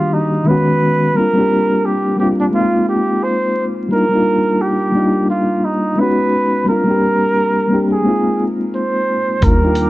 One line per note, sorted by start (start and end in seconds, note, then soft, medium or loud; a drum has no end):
0.00 0.44 D#3 medium
0.00 0.48 G3 medium
0.00 0.48 A#3 medium
0.00 0.47 D4 medium
0.00 0.15 F4 medium
0.00 0.47 F#4 medium
0.00 0.47 G4 medium
0.13 0.49 D#4 medium
0.44 1.02 D#3 medium
0.44 1.03 G#3 medium
0.44 1.04 B3 medium
0.44 1.17 B4 loud
0.49 1.04 C#4 medium
0.49 1.05 F#4 medium
1.13 1.28 G3 medium
1.13 1.29 A#3 medium
1.13 1.29 C4 medium
1.13 1.87 A#4 loud
1.18 1.30 D4 medium
1.18 1.31 F4 medium
1.33 1.92 G3 medium
1.33 1.93 A#3 medium
1.33 1.94 C4 medium
1.38 1.95 D4 medium
1.38 1.95 G4 medium
1.85 2.19 G4 medium
2.16 2.52 G3 medium
2.16 2.51 A#3 medium
2.16 2.52 C4 medium
2.16 2.28 G4 medium
2.21 2.54 D4 medium
2.21 2.55 F4 medium
2.40 2.46 D4 medium
2.51 3.63 G#3 medium
2.51 3.64 A#3 medium
2.51 3.64 C4 medium
2.51 2.86 F4 medium
2.56 3.65 D#4 medium
2.56 3.66 F4 medium
2.89 3.25 G4 medium
3.23 3.66 C5 loud
3.89 4.03 G3 medium
3.89 4.04 A#3 medium
3.89 4.05 D4 medium
3.89 4.63 A#4 loud
3.93 4.06 D#4 medium
3.93 4.07 F4 medium
4.09 4.68 G3 medium
4.09 4.69 A#3 medium
4.09 4.70 D4 medium
4.14 4.70 D#4 medium
4.14 4.71 F4 medium
4.61 5.29 G4 medium
4.92 5.90 G3 medium
4.92 5.90 A#3 medium
4.92 5.91 D4 medium
4.97 5.92 D#4 medium
4.97 5.93 F4 medium
5.30 5.66 F4 medium
5.65 6.01 D#4 medium
5.96 6.54 G#3 medium
5.96 6.55 B3 medium
5.96 6.56 C#4 medium
5.96 6.68 B4 loud
6.01 6.56 D#4 medium
6.01 6.57 F#4 medium
6.64 6.79 G3 medium
6.64 6.80 A#3 medium
6.64 6.81 C4 medium
6.69 6.82 D4 medium
6.69 6.82 F4 medium
6.69 7.87 A#4 loud
6.84 7.43 G3 medium
6.84 7.44 A#3 medium
6.84 7.45 C4 medium
6.89 7.46 D4 medium
6.89 7.47 G4 medium
7.68 8.03 G3 medium
7.68 8.03 A#3 medium
7.68 8.05 C4 medium
7.73 8.06 D4 medium
7.73 8.07 G4 medium
7.92 8.45 G#4 medium
8.02 9.15 G#3 medium
8.02 9.16 A#3 medium
8.02 9.16 C4 medium
8.07 9.17 D#4 medium
8.07 9.18 F4 medium
8.75 9.45 C5 medium
9.40 9.89 D#2 loud
9.40 9.55 G3 medium
9.40 9.56 A#3 medium
9.40 9.57 D4 medium
9.40 9.90 A#4 medium
9.40 9.90 A#4 loud
9.40 9.90 G5 medium
9.40 9.90 D6 medium
9.40 kick loud
9.40 closed hi-hat medium
9.45 9.57 D#4 medium
9.45 9.58 F4 medium
9.60 9.90 G3 medium
9.60 9.90 A#3 medium
9.60 9.90 D4 medium
9.64 9.90 D#4 medium
9.64 9.90 F4 medium
9.75 closed hi-hat medium